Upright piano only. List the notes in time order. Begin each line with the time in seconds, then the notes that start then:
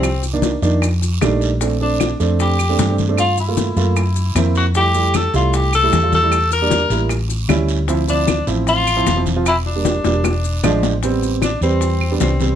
0.33 D#3 A#3 D4
0.62 D#3 A#3 D4
1.22 D#3 G3 A3 D4
1.61 A3 C4 D4
1.81 A3 C4 D4
2.20 A3 C4 D4
2.69 A3 C4 D4
2.89 A3 C4 D4
3.09 A3 C4 D4
3.48 A3 A#3 F4
3.77 A3 A#3 F4
4.36 A#3 C4 E4
4.75 G3 A3 E4
4.94 G3 A3 E4
5.34 G3 A3 E4
5.83 G3 A3 E4
6.03 G3 A3 F4
6.22 G3 A3 E4
6.62 G3 A#3 D4
6.91 G3 A#3 E4
7.49 G3 C#4 E4
7.88 F3 C4 E4
8.08 F3 C4 E4
8.47 F3 C4 E4
8.97 F3 C4 E4
9.16 F3 C4 E4
9.36 F3 C4 F4
9.75 G3 A#3 D4
10.05 G3 A#3 D4
10.64 F3 G#3 D4
11.03 G3 B3 C4
11.63 G3 C4 B4
12.11 G3 B3 D4
12.41 G3 B3 C4